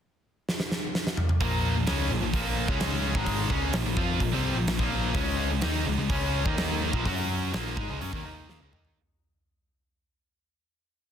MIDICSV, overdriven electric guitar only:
0, 0, Header, 1, 2, 480
1, 0, Start_track
1, 0, Key_signature, -5, "minor"
1, 0, Tempo, 467654
1, 1445, Time_signature, 4, 2, 24, 8
1, 5289, Tempo, 477327
1, 11283, End_track
2, 0, Start_track
2, 0, Title_t, "Overdriven electric guitar"
2, 0, Program_c, 0, 29
2, 1445, Note_on_c, 0, 46, 85
2, 1450, Note_on_c, 0, 53, 93
2, 1454, Note_on_c, 0, 58, 100
2, 1790, Note_off_c, 0, 46, 0
2, 1794, Note_off_c, 0, 53, 0
2, 1801, Note_off_c, 0, 58, 0
2, 1802, Note_on_c, 0, 46, 61
2, 1806, Note_on_c, 0, 53, 64
2, 1911, Note_off_c, 0, 46, 0
2, 1915, Note_on_c, 0, 49, 91
2, 1919, Note_off_c, 0, 53, 0
2, 1923, Note_on_c, 0, 56, 84
2, 1925, Note_on_c, 0, 61, 99
2, 2151, Note_off_c, 0, 49, 0
2, 2155, Note_off_c, 0, 56, 0
2, 2156, Note_off_c, 0, 61, 0
2, 2159, Note_on_c, 0, 46, 69
2, 2165, Note_on_c, 0, 53, 72
2, 2262, Note_off_c, 0, 46, 0
2, 2269, Note_off_c, 0, 53, 0
2, 2275, Note_on_c, 0, 46, 63
2, 2281, Note_on_c, 0, 53, 74
2, 2386, Note_off_c, 0, 46, 0
2, 2395, Note_off_c, 0, 53, 0
2, 2399, Note_on_c, 0, 46, 100
2, 2407, Note_on_c, 0, 53, 89
2, 2410, Note_on_c, 0, 58, 95
2, 2751, Note_off_c, 0, 46, 0
2, 2755, Note_on_c, 0, 49, 76
2, 2757, Note_off_c, 0, 53, 0
2, 2758, Note_off_c, 0, 58, 0
2, 2764, Note_on_c, 0, 56, 95
2, 2768, Note_on_c, 0, 61, 96
2, 3230, Note_off_c, 0, 49, 0
2, 3234, Note_on_c, 0, 44, 95
2, 3235, Note_off_c, 0, 56, 0
2, 3237, Note_off_c, 0, 61, 0
2, 3242, Note_on_c, 0, 51, 110
2, 3247, Note_on_c, 0, 56, 116
2, 3588, Note_off_c, 0, 56, 0
2, 3590, Note_off_c, 0, 44, 0
2, 3594, Note_off_c, 0, 51, 0
2, 3599, Note_on_c, 0, 49, 87
2, 3600, Note_on_c, 0, 56, 103
2, 3606, Note_on_c, 0, 61, 105
2, 3833, Note_off_c, 0, 49, 0
2, 3834, Note_off_c, 0, 56, 0
2, 3837, Note_off_c, 0, 61, 0
2, 3837, Note_on_c, 0, 46, 59
2, 3845, Note_on_c, 0, 53, 69
2, 3951, Note_off_c, 0, 46, 0
2, 3952, Note_off_c, 0, 53, 0
2, 3963, Note_on_c, 0, 46, 58
2, 3964, Note_on_c, 0, 53, 71
2, 4061, Note_off_c, 0, 53, 0
2, 4069, Note_off_c, 0, 46, 0
2, 4074, Note_on_c, 0, 53, 101
2, 4080, Note_on_c, 0, 60, 108
2, 4083, Note_on_c, 0, 65, 115
2, 4312, Note_off_c, 0, 53, 0
2, 4315, Note_off_c, 0, 60, 0
2, 4316, Note_off_c, 0, 65, 0
2, 4321, Note_on_c, 0, 46, 63
2, 4326, Note_on_c, 0, 53, 74
2, 4443, Note_off_c, 0, 46, 0
2, 4445, Note_off_c, 0, 53, 0
2, 4449, Note_on_c, 0, 48, 88
2, 4450, Note_on_c, 0, 55, 96
2, 4457, Note_on_c, 0, 60, 110
2, 4681, Note_off_c, 0, 48, 0
2, 4682, Note_off_c, 0, 55, 0
2, 4685, Note_off_c, 0, 60, 0
2, 4691, Note_on_c, 0, 46, 62
2, 4694, Note_on_c, 0, 53, 69
2, 4801, Note_off_c, 0, 46, 0
2, 4804, Note_off_c, 0, 53, 0
2, 4813, Note_on_c, 0, 46, 61
2, 4816, Note_on_c, 0, 53, 67
2, 4910, Note_off_c, 0, 46, 0
2, 4915, Note_off_c, 0, 53, 0
2, 4922, Note_on_c, 0, 46, 88
2, 4928, Note_on_c, 0, 53, 99
2, 4931, Note_on_c, 0, 58, 100
2, 5280, Note_off_c, 0, 46, 0
2, 5284, Note_off_c, 0, 53, 0
2, 5284, Note_on_c, 0, 49, 92
2, 5285, Note_off_c, 0, 58, 0
2, 5289, Note_on_c, 0, 56, 113
2, 5295, Note_on_c, 0, 61, 113
2, 5633, Note_off_c, 0, 49, 0
2, 5635, Note_off_c, 0, 56, 0
2, 5642, Note_off_c, 0, 61, 0
2, 5645, Note_on_c, 0, 49, 60
2, 5647, Note_on_c, 0, 56, 75
2, 5752, Note_off_c, 0, 49, 0
2, 5756, Note_on_c, 0, 51, 88
2, 5757, Note_off_c, 0, 56, 0
2, 5761, Note_on_c, 0, 58, 91
2, 5763, Note_on_c, 0, 63, 92
2, 5992, Note_off_c, 0, 51, 0
2, 5995, Note_off_c, 0, 58, 0
2, 5996, Note_off_c, 0, 63, 0
2, 6000, Note_on_c, 0, 49, 64
2, 6006, Note_on_c, 0, 56, 74
2, 6115, Note_off_c, 0, 49, 0
2, 6121, Note_off_c, 0, 56, 0
2, 6127, Note_on_c, 0, 49, 66
2, 6133, Note_on_c, 0, 56, 83
2, 6231, Note_off_c, 0, 49, 0
2, 6235, Note_off_c, 0, 56, 0
2, 6243, Note_on_c, 0, 49, 94
2, 6247, Note_on_c, 0, 56, 90
2, 6253, Note_on_c, 0, 61, 107
2, 6601, Note_off_c, 0, 49, 0
2, 6601, Note_on_c, 0, 51, 78
2, 6606, Note_off_c, 0, 56, 0
2, 6606, Note_on_c, 0, 58, 91
2, 6610, Note_off_c, 0, 61, 0
2, 6610, Note_on_c, 0, 63, 90
2, 7073, Note_off_c, 0, 51, 0
2, 7076, Note_off_c, 0, 58, 0
2, 7078, Note_off_c, 0, 63, 0
2, 7086, Note_on_c, 0, 46, 96
2, 7092, Note_on_c, 0, 53, 98
2, 7196, Note_off_c, 0, 46, 0
2, 7199, Note_off_c, 0, 53, 0
2, 7207, Note_on_c, 0, 54, 92
2, 7211, Note_on_c, 0, 61, 88
2, 7217, Note_on_c, 0, 66, 103
2, 7677, Note_off_c, 0, 54, 0
2, 7679, Note_off_c, 0, 61, 0
2, 7682, Note_off_c, 0, 66, 0
2, 7682, Note_on_c, 0, 46, 80
2, 7688, Note_on_c, 0, 53, 96
2, 7690, Note_on_c, 0, 58, 91
2, 7914, Note_off_c, 0, 46, 0
2, 7915, Note_off_c, 0, 53, 0
2, 7918, Note_off_c, 0, 58, 0
2, 7919, Note_on_c, 0, 56, 91
2, 7924, Note_on_c, 0, 63, 103
2, 8033, Note_off_c, 0, 56, 0
2, 8036, Note_off_c, 0, 63, 0
2, 8048, Note_on_c, 0, 49, 101
2, 8052, Note_on_c, 0, 56, 98
2, 8158, Note_off_c, 0, 49, 0
2, 8160, Note_off_c, 0, 56, 0
2, 8165, Note_on_c, 0, 54, 93
2, 8170, Note_on_c, 0, 61, 109
2, 8275, Note_off_c, 0, 54, 0
2, 8279, Note_off_c, 0, 61, 0
2, 8279, Note_on_c, 0, 51, 94
2, 8286, Note_on_c, 0, 58, 101
2, 8389, Note_off_c, 0, 51, 0
2, 8392, Note_off_c, 0, 58, 0
2, 8401, Note_on_c, 0, 51, 79
2, 8404, Note_on_c, 0, 58, 91
2, 8408, Note_on_c, 0, 63, 99
2, 8635, Note_off_c, 0, 51, 0
2, 8636, Note_off_c, 0, 58, 0
2, 8638, Note_off_c, 0, 63, 0
2, 8645, Note_on_c, 0, 51, 76
2, 8648, Note_on_c, 0, 58, 93
2, 8757, Note_off_c, 0, 51, 0
2, 8759, Note_off_c, 0, 58, 0
2, 8766, Note_on_c, 0, 49, 84
2, 8768, Note_on_c, 0, 56, 95
2, 8874, Note_off_c, 0, 49, 0
2, 8878, Note_on_c, 0, 51, 80
2, 8879, Note_off_c, 0, 56, 0
2, 8885, Note_on_c, 0, 58, 77
2, 8889, Note_on_c, 0, 63, 78
2, 9114, Note_off_c, 0, 51, 0
2, 9118, Note_off_c, 0, 58, 0
2, 9120, Note_off_c, 0, 63, 0
2, 11283, End_track
0, 0, End_of_file